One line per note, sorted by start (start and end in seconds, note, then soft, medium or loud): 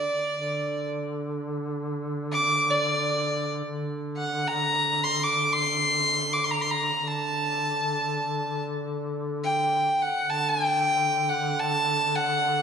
0.00 0.14 D3 medium
0.00 0.88 D5 medium
0.31 3.62 D3 medium
2.33 2.72 D6 medium
2.70 3.51 D5 medium
3.64 6.93 D3 medium
4.17 4.49 F#5 medium
4.48 5.05 A#5 medium
5.04 5.25 C6 medium
5.23 5.54 D6 medium
5.53 6.35 C6 medium
6.33 6.46 D6 medium
6.44 6.52 C6 medium
6.51 6.63 A#5 medium
6.61 6.73 C6 medium
6.71 7.09 A#5 medium
6.93 10.06 D3 medium
7.08 8.63 A5 medium
9.43 10.04 G5 medium
10.02 10.31 F#5 medium
10.23 12.62 D3 medium
10.30 10.50 A5 medium
10.49 11.31 G5 medium
11.29 11.61 F#5 medium
11.59 12.17 A5 medium
12.16 12.62 F#5 medium